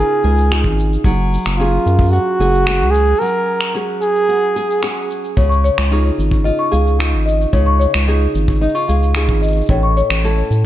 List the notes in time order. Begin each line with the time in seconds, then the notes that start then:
Already playing: C#3 D#4 F4 G#4
0.24 C#2 G#4
0.38 cabasa
0.51 D#4 F4 G#4, finger snap, cabasa
0.64 G#1, kick
0.79 cabasa
0.93 cabasa
1.04 F#1 F#3, kick, cabasa
1.33 cabasa
1.35 cabasa
1.38 cabasa
1.43 F#1, finger snap, cabasa
1.47 cabasa
1.58 C#4 F4 G#4, cabasa
1.86 F#2, cabasa
1.99 kick, cabasa
2.03 cabasa
2.06 cabasa
2.08 cabasa
2.10 F#4, cabasa
2.12 F#4, cabasa
2.15 cabasa
2.40 F#1 G#4, cabasa
2.55 cabasa
2.67 C#4 F#4 G#4, finger snap, cabasa
2.82 C#2
2.91 G#4, cabasa
3.08 cabasa
3.17 A#4, cabasa
3.21 F#3, cabasa
3.26 cabasa
3.61 finger snap, cabasa
3.74 C#4 F#4 G#4, cabasa
4.02 G#4, cabasa
4.16 cabasa
4.29 F#4, cabasa
4.56 G#4, cabasa
4.70 cabasa
4.82 C#4 F#4 G#4, finger snap, cabasa
5.11 cabasa
5.25 cabasa
5.37 C#2 C#3 C#5, kick
5.49 C#6, cabasa
5.64 C#5, cabasa
5.78 C#2, finger snap
5.91 D#4 F4 G#4, cabasa
6.18 G#1, cabasa
6.31 kick, cabasa
6.44 F4 D#5, cabasa
6.59 C#6
6.71 C#2 G#4 F5, cabasa
6.87 cabasa
6.99 D#4 F4 G#4, finger snap, cabasa
7.13 G#1
7.26 D#5, cabasa
7.42 cabasa
7.53 C#2 C#3 C#5, kick, cabasa
7.66 C#6
7.79 C#5, cabasa
7.94 C#2, finger snap, cabasa
8.07 D#4 F4 G#4, cabasa
8.35 G#1, cabasa
8.48 kick, cabasa
8.56 cabasa
8.61 D#4 D#5, cabasa
8.69 cabasa
8.75 F4 C#6
8.88 C#2 G#4 F5, cabasa
9.03 cabasa
9.15 D#4 F4 G#4, finger snap, cabasa
9.29 G#1, kick
9.42 D#5, cabasa
9.48 cabasa
9.52 cabasa
9.56 cabasa
9.61 cabasa
9.66 A1, kick, cabasa
9.70 A2 C#5, cabasa
9.83 C#6
9.97 C#5, cabasa
10.10 A1, finger snap, cabasa
10.24 C#4 E4 A4, cabasa
10.50 A2, cabasa